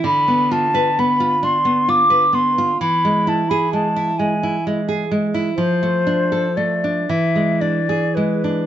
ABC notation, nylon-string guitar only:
X:1
M:6/8
L:1/16
Q:3/8=43
K:Ephr
V:1 name="Nylon-string guitar"
D, B, F B B, F D B, F B B, F | E, ^G, E ^G G, E G, E G, G G, E | F, A, D A A, D E, ^G, D ^G G, D |]